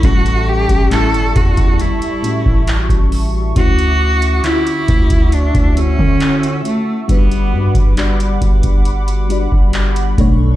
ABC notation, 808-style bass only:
X:1
M:4/4
L:1/16
Q:1/4=68
K:Glyd
V:1 name="808-style bass" clef=bass
A,,,3 A,,,2 G,,, E,,2 G,,, z2 A,,,2 A,,,3 | D,,4 z2 D,,3 D,,2 D,3 z2 | G,,,2 G,, G,,,3 G,,,4- G,,, G,,,3 B,,,2 |]